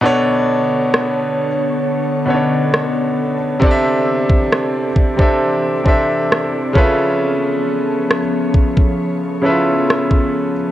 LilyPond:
<<
  \new Staff \with { instrumentName = "Grand piano" } { \time 4/4 \key b \minor \tempo 4 = 67 <b, b d' a' cis''>4. r4 <b, b cis' d' a' cis''>4~ <b, b cis' d' a' cis''>16 r16 | <c c' d' a' d'' e''>4. r16 <c c' d' a' e''>8 r16 <c c' d' a' e''>4 <cis cis' eis' a' b' e''>8~ | <cis cis' eis' a' b' e''>4 r4. <cis cis' e' eis' a' b' e''>4~ <cis cis' e' eis' a' b' e''>16 r16 | }
  \new Staff \with { instrumentName = "Ambient pad" } { \time 4/4 \key b \minor << { <d b cis''>1 | <e c' d''>2.~ <e c' d''>8 <eis b cis''>8~ | <eis b cis''>1 | } \\ { a'1~ | a'1~ | a'1 | } >> }
  \new DrumStaff \with { instrumentName = "Drums" } \drummode { \time 4/4 r4 ss4 r4 ss4 | bd8. bd16 ss8 bd16 bd16 r8 bd8 ss8 bd8 | r4 ss8 bd16 bd16 r4 ss16 bd8. | }
>>